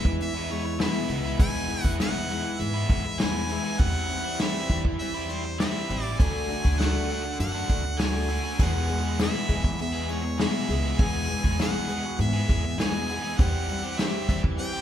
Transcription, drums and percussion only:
0.05 kick medium
0.20 closed hi-hat medium
0.51 closed hi-hat medium
0.80 snare loud
0.80 closed hi-hat medium
1.09 closed hi-hat medium
1.39 kick loud
1.39 closed hi-hat loud
1.69 closed hi-hat medium
1.84 kick medium
2.00 snare loud
2.00 closed hi-hat loud
2.30 closed hi-hat medium
2.60 closed hi-hat loud
2.90 kick medium
2.90 closed hi-hat medium
3.20 snare loud
3.20 closed hi-hat loud
3.49 closed hi-hat medium
3.79 kick loud
3.79 closed hi-hat loud
4.10 closed hi-hat medium
4.39 snare loud
4.39 closed hi-hat medium
4.70 kick medium
4.70 closed hi-hat medium
4.85 kick medium
5.00 closed hi-hat medium
5.29 closed hi-hat medium
5.60 snare loud
5.60 closed hi-hat loud
5.90 closed hi-hat medium
6.20 kick loud
6.20 closed hi-hat loud
6.50 closed hi-hat medium
6.65 kick medium
6.80 snare loud
6.80 closed hi-hat loud
7.10 closed hi-hat medium
7.40 closed hi-hat loud
7.69 kick medium
7.69 closed hi-hat medium
7.99 snare loud
7.99 closed hi-hat loud
8.15 snare soft
8.29 closed hi-hat medium
8.59 kick loud
8.59 crash medium
8.89 closed hi-hat medium
9.19 snare loud
9.19 closed hi-hat medium
9.49 kick medium
9.49 closed hi-hat medium
9.64 kick medium
9.79 closed hi-hat medium
10.09 closed hi-hat medium
10.39 snare loud
10.39 closed hi-hat medium
10.70 closed hi-hat medium
10.99 kick loud
10.99 closed hi-hat medium
11.30 closed hi-hat medium
11.44 kick medium
11.59 snare loud
11.59 closed hi-hat loud
11.89 closed hi-hat medium
12.20 closed hi-hat loud
12.49 kick medium
12.49 closed hi-hat medium
12.80 snare loud
12.80 closed hi-hat loud
13.09 closed hi-hat medium
13.39 kick loud
13.39 closed hi-hat loud
13.69 closed hi-hat medium
13.99 snare loud
13.99 closed hi-hat loud
14.29 kick medium
14.29 closed hi-hat medium
14.44 kick medium
14.60 closed hi-hat medium

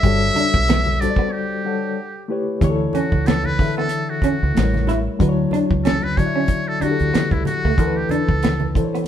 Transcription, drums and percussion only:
0.03 kick loud
0.03 closed hi-hat medium
0.03 muted conga soft
0.35 closed hi-hat medium
0.35 high conga medium
0.54 kick loud
0.68 finger snap medium
0.68 snare loud
0.68 closed hi-hat medium
0.85 high conga medium
1.02 closed hi-hat medium
1.02 muted conga soft
1.02 low conga soft
1.16 kick medium
2.61 kick loud
2.61 closed hi-hat medium
2.93 closed hi-hat medium
2.93 high conga medium
3.12 kick medium
3.26 finger snap medium
3.26 snare loud
3.26 closed hi-hat medium
3.44 high conga medium
3.59 kick medium
3.59 open hi-hat soft
3.59 muted conga soft
3.59 low conga soft
3.89 closed hi-hat medium
4.22 kick medium
4.22 closed hi-hat medium
4.22 muted conga soft
4.22 high conga soft
4.57 finger snap medium
4.57 snare loud
4.57 closed hi-hat medium
4.74 snare soft
4.74 high conga medium
4.87 snare soft
4.87 closed hi-hat medium
4.87 low conga medium
5.20 kick loud
5.20 closed hi-hat medium
5.51 closed hi-hat medium
5.51 high conga medium
5.71 kick medium
5.85 finger snap medium
5.85 snare loud
5.85 closed hi-hat medium
6.02 high conga medium
6.17 kick medium
6.17 closed hi-hat medium
6.17 muted conga soft
6.17 low conga medium
6.46 kick medium
6.46 closed hi-hat medium
6.46 muted conga soft
6.80 closed hi-hat medium
6.80 high conga soft
6.99 closed hi-hat soft
7.14 finger snap medium
7.14 snare loud
7.14 closed hi-hat medium
7.14 muted conga soft
7.31 kick medium
7.31 high conga medium
7.45 closed hi-hat medium
7.45 low conga medium
7.78 kick loud
7.78 closed hi-hat medium
7.78 muted conga soft
8.09 closed hi-hat medium
8.09 muted conga soft
8.09 high conga medium
8.29 kick medium
8.42 finger snap medium
8.42 snare loud
8.42 closed hi-hat medium
8.42 muted conga soft
8.60 high conga medium
8.75 kick medium
8.75 closed hi-hat medium
8.75 low conga soft
8.95 closed hi-hat soft
9.04 muted conga soft

